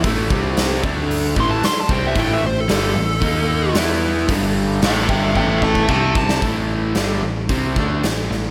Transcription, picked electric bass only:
0.05 A1
0.30 C2
0.84 D2
1.37 A1
1.64 muted picked electric bass stroke
1.89 C2
2.16 A1
2.43 A1
2.70 G1
2.95 A1
3.22 D#2
3.75 E2
4.29 G1
4.82 A1
5.09 G1
5.36 A1
5.89 C2
6.42 A1
6.95 G1
7.22 A1
7.49 C2
7.76 D2
8.03 A1
8.30 A1

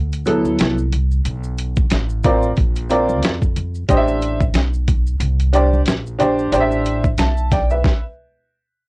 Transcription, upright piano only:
0.26 F#3 B3 E4 A4
2.24 C4 F4 A#4 D5
2.90 C4 F4 A#4 D5
3.89 D4 G4 C5 D#5
3.97 E5
5.53 D4 G4 C5 D5
6.19 D4 G4 C5 D5
6.52 D4 G4 C5 D5
6.60 E5
7.19 E5 A5
7.52 D5 G5
7.71 B4 E5

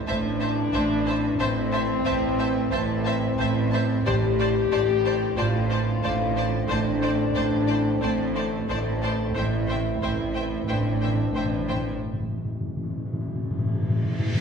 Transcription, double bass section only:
0.06 A1
0.72 A1
1.38 A1
2.06 A1
2.72 A1
3.39 A1
4.05 A1
4.72 A1
5.38 A1
6.04 A1
6.70 A1
7.36 A1
8.02 A1
8.68 A1
9.35 A1
10.01 A1
10.67 A1
11.34 A1

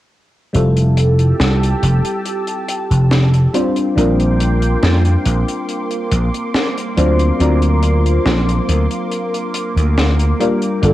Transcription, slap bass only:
0.54 F1
1.40 C2
1.83 F1
2.91 F1
3.97 A#1
4.83 F2
5.26 A#1
6.12 A#1
6.97 D2
7.40 D2
8.26 A#1
8.69 D2
9.76 D2
10.83 G1

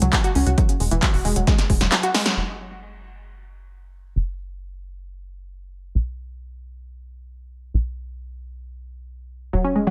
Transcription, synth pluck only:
0.02 F#3
0.13 F#3
0.24 F#4
0.35 C#4
0.47 F#4
0.58 F#3
0.69 C#3
0.80 G#3
0.91 E3
1.03 F#3
1.14 F#4
1.25 G#3
1.36 F#3
1.47 G#3
1.59 C#3
1.70 G#3
1.81 F#3
1.92 F#3
2.03 F#4
2.14 G#3
2.26 F#3
9.53 F#3
9.64 C#4
9.76 G#3
9.87 F#3

